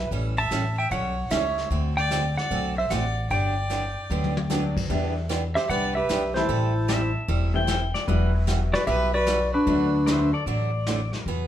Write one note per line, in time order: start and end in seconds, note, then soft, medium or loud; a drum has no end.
0.11 0.43 A1 medium
0.11 0.34 E3 medium
0.11 0.34 G3 medium
0.11 0.34 C#4 medium
0.11 0.34 E4 medium
0.11 0.34 A4 medium
0.11 brush sweep soft
0.11 kick soft
0.37 0.74 E5 medium
0.37 0.79 A5 medium
0.50 0.84 A1 medium
0.50 0.63 E3 medium
0.50 0.63 G3 medium
0.50 0.63 C#4 medium
0.50 0.64 E4 medium
0.50 0.63 A4 medium
0.50 snare medium
0.50 hi-hat pedal medium
0.78 0.90 E5 medium
0.78 0.91 G5 medium
0.91 1.25 B1 medium
0.91 1.14 E3 medium
0.91 1.14 G3 medium
0.91 1.14 C#4 medium
0.91 1.14 E4 medium
0.91 1.14 A4 medium
0.91 1.28 C#5 medium
0.91 1.32 F#5 loud
0.91 brush sweep soft
0.91 kick soft
1.30 1.65 C#2 medium
1.30 1.43 E3 medium
1.30 1.55 G3 medium
1.30 1.43 G3 medium
1.30 1.55 A3 medium
1.30 1.43 C#4 medium
1.30 1.55 C#4 medium
1.30 1.43 E4 medium
1.30 1.55 E4 medium
1.30 1.43 A4 medium
1.30 1.68 C#5 medium
1.30 1.68 E5 medium
1.30 snare medium
1.30 hi-hat pedal medium
1.58 snare soft
1.70 2.34 D2 medium
1.70 1.93 D3 medium
1.70 1.94 A3 medium
1.70 1.94 C4 medium
1.70 1.94 F#4 medium
1.70 1.94 A4 medium
1.70 brush sweep medium
1.70 kick soft
1.97 2.35 D5 medium
1.97 2.37 G5 medium
2.11 2.23 D3 medium
2.11 2.23 A3 medium
2.11 2.23 C4 medium
2.11 2.23 F#4 medium
2.11 2.23 A4 medium
2.11 snare medium
2.11 hi-hat pedal medium
2.37 2.74 D5 medium
2.37 2.74 F#5 medium
2.37 snare soft
2.51 2.85 B1 medium
2.51 2.73 D3 medium
2.51 2.73 A3 medium
2.51 2.73 C4 medium
2.51 2.74 F#4 medium
2.51 2.74 A4 medium
2.51 brush sweep soft
2.51 kick soft
2.78 2.90 C5 medium
2.78 2.91 E5 medium
2.90 3.24 A1 medium
2.90 3.02 D3 medium
2.90 3.03 A3 medium
2.90 3.03 C4 medium
2.90 3.03 F#4 medium
2.90 3.03 A4 medium
2.90 3.28 D5 medium
2.90 3.28 F#5 medium
2.90 snare medium
2.90 hi-hat pedal medium
3.30 3.94 G1 medium
3.30 3.53 D3 medium
3.30 3.53 F#3 medium
3.30 3.53 B3 medium
3.30 3.53 D4 medium
3.30 3.53 G4 medium
3.30 4.72 D5 medium
3.30 4.73 G5 medium
3.30 brush sweep soft
3.30 kick soft
3.70 3.82 D3 medium
3.70 3.82 F#3 medium
3.70 3.82 B3 medium
3.70 3.82 D4 medium
3.70 3.82 G4 medium
3.70 snare medium
3.70 hi-hat pedal medium
4.10 4.74 D2 medium
4.10 4.33 D3 medium
4.10 4.33 F#3 medium
4.10 4.33 B3 medium
4.10 4.33 D4 medium
4.10 4.33 G4 medium
4.10 high tom soft
4.24 high tom medium
4.37 high tom medium
4.50 4.62 D3 medium
4.50 4.74 F#3 medium
4.50 4.62 F#3 medium
4.50 4.74 G3 medium
4.50 4.74 B3 medium
4.50 4.62 B3 medium
4.50 4.62 D4 medium
4.50 4.74 D4 medium
4.50 4.63 G4 medium
4.50 snare medium
4.50 hi-hat pedal medium
4.77 kick medium
4.77 crash medium
4.90 5.53 E2 medium
4.90 5.14 E3 medium
4.90 5.12 E3 medium
4.90 5.14 G3 medium
4.90 5.12 B3 medium
4.90 5.14 B3 medium
4.90 5.13 D4 medium
4.90 5.14 D4 medium
4.90 5.14 E4 medium
4.90 5.13 G4 medium
4.90 brush sweep soft
4.90 kick soft
5.29 5.41 E3 medium
5.29 5.41 B3 medium
5.29 5.41 D4 medium
5.29 5.42 G4 medium
5.29 snare medium
5.29 hi-hat pedal medium
5.55 5.69 G4 medium
5.55 5.69 C5 medium
5.55 5.69 E5 medium
5.55 snare soft
5.69 6.03 C2 medium
5.69 5.92 E3 medium
5.69 5.92 B3 medium
5.69 5.93 D4 medium
5.69 5.93 G4 medium
5.69 5.95 B4 medium
5.69 5.94 D5 medium
5.69 5.97 F#5 loud
5.69 brush sweep soft
5.69 kick soft
5.95 6.33 G4 medium
5.95 6.32 B4 medium
5.95 6.32 E5 medium
6.09 6.43 B1 medium
6.09 6.21 E3 medium
6.09 6.21 B3 medium
6.09 6.21 D4 medium
6.09 6.22 G4 medium
6.09 snare medium
6.09 hi-hat pedal medium
6.34 6.48 E3 medium
6.34 6.48 G3 medium
6.34 6.48 A3 medium
6.34 6.48 C4 medium
6.34 6.48 E4 medium
6.34 7.12 E4 medium
6.34 7.11 A4 medium
6.34 7.10 C5 medium
6.34 snare soft
6.49 7.13 A1 medium
6.49 6.71 E3 medium
6.49 6.71 G3 medium
6.49 6.72 C4 medium
6.49 6.72 E4 medium
6.49 6.72 A4 medium
6.49 brush sweep soft
6.49 kick soft
6.88 7.00 E3 medium
6.88 7.00 G3 medium
6.88 7.01 C4 medium
6.88 7.01 E4 medium
6.88 7.01 A4 medium
6.88 7.53 E5 medium
6.88 snare medium
6.88 hi-hat pedal medium
7.28 7.92 E1 medium
7.28 7.51 E3 medium
7.28 7.51 G3 medium
7.28 7.51 C4 medium
7.28 7.51 E4 medium
7.28 7.51 A4 medium
7.28 brush sweep soft
7.28 kick soft
7.54 7.66 E3 medium
7.54 7.67 G3 medium
7.54 7.67 A3 medium
7.54 7.67 C4 medium
7.54 7.67 E4 medium
7.54 7.94 G5 medium
7.67 7.80 E3 medium
7.67 7.80 G3 medium
7.67 7.80 C4 medium
7.67 7.80 E4 medium
7.67 7.80 A4 medium
7.67 snare medium
7.67 hi-hat pedal medium
7.94 8.07 D5 medium
7.94 snare soft
8.08 8.71 E1 medium
8.08 8.69 E3 medium
8.08 8.31 E3 medium
8.08 8.69 F#3 medium
8.08 8.69 G3 medium
8.08 8.31 G3 medium
8.08 8.31 B3 medium
8.08 8.69 B3 medium
8.08 8.69 E4 medium
8.08 8.31 F#4 medium
8.08 8.33 B4 medium
8.08 brush sweep medium
8.08 kick soft
8.47 8.59 E3 medium
8.47 8.59 G3 medium
8.47 8.60 B3 medium
8.47 8.60 F#4 medium
8.47 snare medium
8.47 hi-hat pedal medium
8.73 8.86 F#4 medium
8.73 8.86 B4 medium
8.73 8.87 D5 loud
8.73 snare soft
8.87 9.51 B1 medium
8.87 9.10 E3 medium
8.87 9.10 G3 medium
8.87 9.10 B3 medium
8.87 9.10 F#4 medium
8.87 9.12 G4 medium
8.87 9.12 B4 loud
8.87 9.14 E5 loud
8.87 brush sweep soft
8.87 kick soft
9.13 9.51 F#4 medium
9.13 9.51 B4 medium
9.13 9.54 D5 loud
9.27 9.39 E3 medium
9.27 9.39 G3 medium
9.27 9.39 B3 medium
9.27 9.39 F#4 medium
9.27 snare medium
9.27 hi-hat pedal medium
9.53 10.30 D4 medium
9.53 10.29 F#4 medium
9.53 10.29 B4 medium
9.66 10.30 D2 medium
9.66 10.27 D3 medium
9.66 9.89 D3 medium
9.66 10.27 F#3 medium
9.66 9.90 F#3 medium
9.66 10.28 A3 medium
9.66 9.89 A3 medium
9.66 10.28 D4 medium
9.66 9.90 D4 medium
9.66 10.28 F#4 medium
9.66 9.90 F#4 medium
9.66 brush sweep soft
9.66 kick soft
10.06 10.19 D3 medium
10.06 10.19 F#3 medium
10.06 10.19 A3 medium
10.06 10.19 D4 medium
10.06 10.20 F#4 medium
10.06 10.33 C5 medium
10.06 10.32 E5 medium
10.06 snare medium
10.06 hi-hat pedal medium
10.33 10.46 A4 medium
10.33 10.46 D5 medium
10.46 11.10 A1 medium
10.46 10.69 D3 medium
10.46 10.69 F#3 medium
10.46 10.69 A3 medium
10.46 10.70 D4 medium
10.46 10.70 F#4 medium
10.46 11.24 D5 medium
10.46 brush sweep soft
10.46 kick soft
10.87 10.99 D3 medium
10.87 10.99 F#3 medium
10.87 10.99 A3 medium
10.87 10.99 D4 medium
10.87 10.99 F#4 medium
10.87 snare medium
10.87 hi-hat pedal medium
11.13 snare soft
11.26 11.47 E2 medium
11.26 11.47 E3 medium
11.26 11.47 F#3 medium
11.26 11.47 B3 medium
11.26 11.47 F#4 medium
11.26 11.47 B4 medium
11.26 brush sweep medium
11.26 kick soft